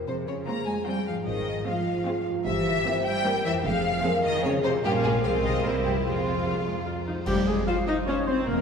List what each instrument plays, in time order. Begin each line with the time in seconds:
Already playing: harp F2 G#3
0.00 harp F4 C5
0.07 double bass section F2, cello section C3, french horn section G#4, violin section C5
0.27 cello section C#3, violin section C#5
0.46 viola section G#3 C4, cello section A#3, violin section F4 A#5
0.67 cello section G#3, violin section G#5
0.86 cello section G3, viola section G#3 C4, violin section F4 G5
1.06 harp G#2, cello section F3, violin section F5
1.14 harp G#3
1.18 harp F4
1.23 cello section D#3, harp C5, violin section D#5
1.27 double bass section G#1
1.66 cello section F3, viola section G#3 C4, french horn section F4, violin section F4 F5
2.06 viola section G#3 C4, violin section F4
2.28 harp G2
2.33 harp A#3
2.38 harp G4
2.42 harp C5, violin section E5
2.46 double bass section G1, cello section E3, french horn section G4
2.85 viola section A#3 C4, violin section G4, french horn section C5
3.06 cello section G3, violin section G5
3.25 viola section A#3 C4, violin section G4, french horn section A#4
3.45 harp F2, cello section E3, violin section E5
3.52 harp G#3
3.57 harp G#4
3.61 double bass section F1, harp C5
3.65 cello section F3, french horn section G#4, violin section F5
4.03 viola section G#3 C4, violin section G#4, french horn section A#4
4.25 cello section D#3, violin section D#5
4.44 cello section C#3, viola section G#3 C4, french horn section G#4, violin section G#4 C#5
4.64 harp A#2, cello section C3, violin section C5
4.71 harp A#3
4.76 harp F4
4.80 viola section A#3 C#4, violin section G4, harp C#5
4.84 double bass section A#1, cello section G2, violin section F4, french horn section A#4
5.04 cello section G#2, harp C3, violin section G#4
5.12 harp G#3
5.16 harp F4
5.21 double bass section C2, cello section F3, viola section G#3 C4, french horn section A#4, harp C5, violin section F5
5.25 violin section F4
5.44 harp C3, cello section D#3, violin section D#5
5.52 harp G3
5.56 harp E4
5.61 double bass section C2, cello section A#2, viola section G3 C4, violin section A#4, harp C5
5.66 violin section E4
5.85 cello section G2, harp F3, violin section G4
5.92 harp G#3
5.97 harp F4
6.01 double bass section F2, viola section G#3 C4, violin section F4, french horn section G#4, harp C5
6.06 cello section F2
6.45 viola section G3
6.66 viola section G#3
6.86 viola section F4
7.07 harp F3, viola section D#4
7.14 harp G#3
7.19 harp F4
7.23 double bass section F1, french horn section G3, viola section G3, violin section G4, harp C5, concert bass drum, crash
7.27 cello section F2, flute G4, oboe G4
7.47 french horn section G#3, viola section G#3, oboe G#4, violin section G#4, flute G#4
7.65 french horn section F4, viola section F4, violin section C5 F5, oboe F5, flute F5
7.86 french horn section D#4, viola section D#4, oboe D#5, flute D#5, violin section D#5
8.06 french horn section C#4, viola section C#4, violin section C5 C#5, oboe C#5, flute C#5
8.26 harp F3, french horn section C4, viola section C4, oboe C5, violin section C5, flute C5
8.34 harp A#3
8.39 harp E4
8.43 french horn section A#3, viola section A#3, oboe A#4, violin section A#4, harp C5
8.47 double bass section F1, cello section F2, flute A#4